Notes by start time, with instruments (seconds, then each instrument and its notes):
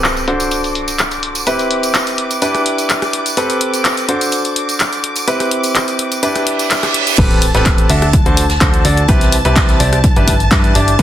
Already playing: grand piano C4 G4 A4 B4, string machine D6, impact
0.04 clap, closed hi-hat, tambourine
0.17 closed hi-hat, tambourine
0.28 grand piano D4 F#4 A4 C5, closed hi-hat
0.40 closed hi-hat, tambourine
0.51 closed hi-hat, tambourine
0.64 closed hi-hat, tambourine
0.75 closed hi-hat
0.88 closed hi-hat, tambourine
0.98 clap, closed hi-hat, tambourine
1.11 closed hi-hat, tambourine
1.23 closed hi-hat
1.35 closed hi-hat, tambourine
1.47 grand piano C4 E4 G4 B4, closed hi-hat, tambourine
1.59 closed hi-hat, tambourine
1.71 closed hi-hat
1.83 closed hi-hat, tambourine
1.94 clap, closed hi-hat, tambourine
2.07 closed hi-hat, tambourine
2.18 closed hi-hat
2.31 closed hi-hat, tambourine
2.42 grand piano D4 E4 G4 B4, closed hi-hat, tambourine
2.55 cross-stick, closed hi-hat, tambourine
2.66 closed hi-hat
2.78 closed hi-hat, tambourine
2.89 clap, closed hi-hat, tambourine
3.02 cross-stick, closed hi-hat, tambourine
3.13 closed hi-hat
3.26 closed hi-hat, tambourine
3.37 grand piano C4 G4 A4 B4, closed hi-hat, tambourine
3.50 closed hi-hat, tambourine
3.61 closed hi-hat
3.74 closed hi-hat, tambourine
3.85 clap, closed hi-hat, tambourine
3.97 closed hi-hat, tambourine
4.09 grand piano D4 F#4 A4 C5, closed hi-hat
4.21 closed hi-hat, tambourine
4.32 closed hi-hat, tambourine
4.45 closed hi-hat, tambourine
4.56 closed hi-hat
4.69 closed hi-hat, tambourine
4.79 clap, closed hi-hat, tambourine
4.93 closed hi-hat, tambourine
5.04 closed hi-hat
5.16 closed hi-hat, tambourine
5.28 grand piano C4 E4 G4 B4, closed hi-hat, tambourine
5.40 cross-stick, closed hi-hat, tambourine
5.51 closed hi-hat
5.63 closed hi-hat, tambourine
5.75 clap, closed hi-hat, tambourine
5.88 closed hi-hat, tambourine
5.99 closed hi-hat
6.12 closed hi-hat, tambourine
6.23 grand piano D4 E4 G4 B4, closed hi-hat, tambourine, reverse cymbal
6.36 cross-stick, closed hi-hat, tambourine
6.47 closed hi-hat
6.59 closed hi-hat, tambourine
6.70 clap, closed hi-hat, tambourine
6.83 cross-stick, clap, closed hi-hat, tambourine
6.94 closed hi-hat
7.07 closed hi-hat, tambourine
7.18 analog synth bass A1, grand piano C4 G4 A4 B4, string machine A5, kick, closed hi-hat, crash, impact
7.31 closed hi-hat
7.42 closed hi-hat, open hi-hat
7.55 analog synth bass A1, grand piano C4 G4 A4 B4, snare, closed hi-hat
7.65 kick, snare, clap, closed hi-hat
7.78 closed hi-hat
7.89 analog synth bass D2, grand piano D4 F#4 A4 E5, open hi-hat
8.02 cross-stick, closed hi-hat
8.13 kick, closed hi-hat
8.26 analog synth bass D2, grand piano D4 F#4 A4 C5, closed hi-hat
8.37 closed hi-hat, open hi-hat
8.49 snare, closed hi-hat
8.61 analog synth bass D2, grand piano D4 F#4 A4 C5, kick, clap, closed hi-hat
8.74 closed hi-hat
8.85 analog synth bass D2, grand piano D4 F#4 A4 D5, closed hi-hat, open hi-hat
8.97 closed hi-hat
9.08 analog synth bass C2, grand piano C4 E4 G4 B4, kick, closed hi-hat
9.21 snare, closed hi-hat
9.32 closed hi-hat, open hi-hat
9.44 analog synth bass C2, grand piano C4 E4 G4 B4, closed hi-hat
9.56 kick, snare, clap, closed hi-hat
9.69 snare, closed hi-hat
9.80 analog synth bass C2, grand piano C4 E4 G4 D5, closed hi-hat, open hi-hat
9.93 cross-stick, closed hi-hat
10.04 kick, closed hi-hat
10.16 analog synth bass G1, grand piano D4 E4 G4 B4, closed hi-hat
10.27 kick, closed hi-hat, open hi-hat
10.40 closed hi-hat
10.51 analog synth bass G2, grand piano D4 E4 G4 B4, kick, snare, clap, closed hi-hat
10.64 closed hi-hat
10.75 analog synth bass G1, grand piano D4 E4 G4 D5, closed hi-hat, open hi-hat
10.88 closed hi-hat
10.99 analog synth bass A1, grand piano C4 G4 A4 B4, kick, closed hi-hat